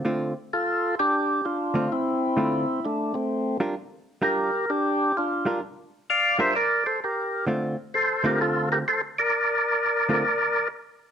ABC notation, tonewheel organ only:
X:1
M:4/4
L:1/8
Q:"Swing" 1/4=129
K:Dm
V:1 name="Tonewheel organ"
z2 [FA]2 [DG]2 [DF]2 | [CE]4 [A,D] [A,C]2 z | z2 [GB]2 [DG]2 [DF]2 | z2 [df] [ce] [Bd] [Ac] [GB]2 |
z2 [Ac] [GB] [FA] [GB] [Ac] [Bd]- | [Bd]6 z2 |]